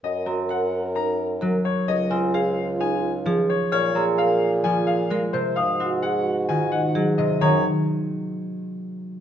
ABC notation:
X:1
M:4/4
L:1/8
Q:1/4=130
K:Gblyd
V:1 name="Celesta"
z b z6 | z a z6 | f' b z3 f z2 | e' g z3 e z2 |
b z6 z |]
V:2 name="Grand piano"
e z g z b z2 d | e z f z a z2 d | d z f z a f z c | f z g z a g z e |
d z6 z |]
V:3 name="Marimba"
z G B z E z B z | z F A z E z A z | z A B z F z B c | z G A z F z A c |
E z6 z |]
V:4 name="French horn"
B6- B z | F6- F z | A6- A z | G6- G z |
z8 |]
V:5 name="Harp" clef=bass
z C4- C G,2 | z C4- C F,2- | F, C3 F,2 A, C, | z C3 E,2 G, C, |
E, z6 z |]
V:6 name="Bassoon" clef=bass
G,,8 | D,,8 | B,,8 | A,,8 |
G,, z6 z |]